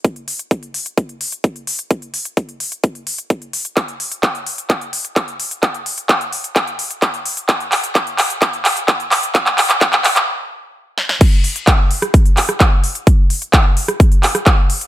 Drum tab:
CC |----------------|----------------|----------------|----------------|
HH |xxoxxxoxxxoxxxox|xxoxxxoxxxoxxxox|xxoxxxoxxxoxxxox|xxoxxxoxxxoxxxox|
CP |----------------|----------------|x---x---x---x---|x---x---x---x---|
SD |----------------|----------------|----------------|----------------|
BD |o---o---o---o---|o---o---o---o---|o---o---o---o---|o---o---o---o---|

CC |----------------|----------------|x---------------|----------------|
HH |xxoxxxoxxxoxxxox|xxoxxxox--------|x-oxx-oxxxoxx-ox|x-oxx-oxxxoxx-ox|
CP |x-x-x-x-x-x-x-x-|xxxxxxxx--------|----x-----x-x---|----x-----x-x---|
SD |----------------|--------------oo|-------r---r----|-------r---r----|
BD |o---o---o---o---|o---o-----------|o---o---o---o---|o---o---o---o---|